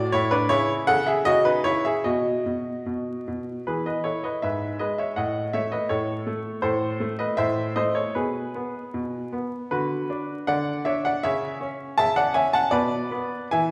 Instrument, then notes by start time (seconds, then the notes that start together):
grand piano
Already playing: A2 F#4 D5
0.12 A2 E4 C#5
0.31 D4 B4
0.49 C#3 E4 C#5
0.87 C#3 A4 F#5
1.06 G#4 E5
1.25 C#3 F#4 D#5
1.45 D#4 B4
1.64 C#3 E4 C#5
1.85 G#4 E5
2.04 B2 F#4 D#5
2.46 B2
2.86 B2
3.28 B2
3.67 E3 G#4 B4
3.86 B4 D#5
4.04 E4 A4 C#5
4.24 B4 D#5
4.42 G#2 B4 E5
4.79 G#3 B4 D#5
4.98 C#5 E5
5.16 A2 D#5 F#5
5.53 A3 C#5 E5
5.72 B4 D#5
5.89 A2 A4 C#5
6.27 A3
6.62 A2 A4 C5
7.00 A3
7.19 B4 D#5
7.37 A2 C5 E5
7.76 A3 C5 D#5
7.95 A4 C#5
8.15 B2 G#4 B4
8.55 B3
8.94 B2
9.33 B3
9.71 D3 F#4 B4
10.10 D4
10.47 D3 D5 F#5
10.85 D4 C#5 E5
11.05 D5 F#5
11.23 C#3 C#5 E5
11.61 C#4
11.98 C#3 E5 A5
12.16 D5 F#5
12.34 C#4 E5 G#5
12.53 F#5 A5
12.71 B2 B4 D5
13.11 B3
13.51 E3 E5 G#5